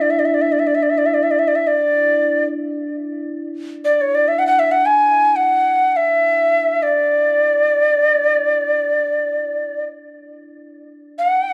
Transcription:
Already playing: D4 E4
0.01 D5
0.10 E5
0.19 D5
0.25 E5
0.34 D5
0.41 E5
0.52 D5
0.59 E5
0.67 D5
0.75 E5
0.83 D5
0.90 E5
0.98 D5
1.06 E5
1.14 D5
1.23 E5
1.31 D5
1.39 E5
1.48 D5
1.55 E5
1.67 D5
3.85 D5
4.01 C#5
4.15 D5
4.28 E5
4.39 F#5
4.47 F#5
4.59 E5
4.71 F#5
4.86 G#5
5.36 F#5
5.96 E5
6.83 D5
11.19 F#5

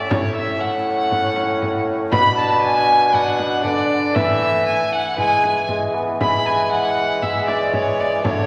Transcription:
Already playing: D5
0.06 A2 A3 C#4 C#5 D5
0.11 C#4 C#5, frame drum
0.34 E5
0.56 A3 C#4 C#5 F#5
0.60 C#4 F#5
1.11 frame drum
1.36 frame drum
1.62 frame drum
2.10 B2 D4 B4 B5, frame drum
2.38 A5
2.62 G#5
3.09 D4 B4
3.14 F#5, frame drum
3.39 frame drum
3.62 D3 D4 B4 D5, frame drum
3.66 D5
4.11 A3 E4 B4
4.15 E3 A3 E5, frame drum
4.66 G#5
4.93 F#5
5.13 E3 G#3 E4 B4
5.18 G#3 G#5, frame drum
5.44 frame drum
5.68 G#3, frame drum
5.95 B3
6.20 G#3 B5, frame drum
6.46 G#5
6.71 F#5
7.22 G#3 E5, frame drum
7.46 D5, frame drum
7.73 C#5, frame drum
7.99 D5
8.19 D3 A3 D4 A4
8.24 D3 A3 C#5, frame drum

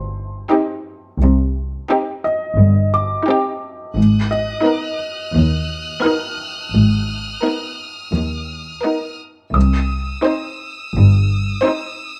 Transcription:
Already playing: G1 G2 C5 C6
0.52 C4 D#4 G4
1.21 C2 C3
1.90 C4 D#4 G4
2.24 D#5
2.58 G1 G2
2.94 D6
3.28 C4 D#4 G4
3.96 G#1 G#2 D#6 F#6
4.31 D#5
4.64 B3 D#4 A#4 F6
5.34 D#2
6.02 B3 D#4 A#4 F6
6.73 G#1 G#2
7.43 B3 D#4 A#4
8.14 D#2
8.83 B3 D#4 A#4
9.54 C2 C3 D#6 E6
10.24 C4 D#4 C5
10.95 G1 G2
11.62 C4 D#4 C5

